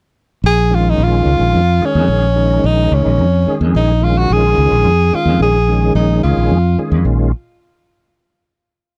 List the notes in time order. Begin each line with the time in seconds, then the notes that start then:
0.44 A#1 G#4
0.70 D#3 G#3 C#4 F4
0.75 F4
0.90 D#4
0.98 A#1
1.03 F4
1.26 C#2
1.40 A#1
1.54 F2
1.81 D#3 G#3 C#4 G#4, muted fingered electric bass stroke
1.85 C#4
1.95 F2
2.08 A#1
2.36 D#3 G#3 C#4 D#4
2.64 A#1 D#4
2.92 C#2 C#4
3.06 A#1
3.19 F2
3.46 D#3 G#3 C#4 G#4, muted fingered electric bass stroke
3.61 F2
3.75 A#1 D#4
4.01 D#3 G#3 C#4 F4
4.18 F#4
4.30 A#1 G#4
4.58 C#2
4.71 A#1
4.85 F2
5.13 D#3 G#3 C#4 F4 G#4, muted fingered electric bass stroke
5.25 F2
5.39 A#1 G#4
5.67 D#3 G#3 C#4 G#4
5.95 A#1 D#4
6.23 C#2 F4
6.37 A#1
6.51 F2
6.78 D#3 G#3 C#4 G#4, muted fingered electric bass stroke
6.92 F2
7.05 A#1 D#3 G#3 C#4 F4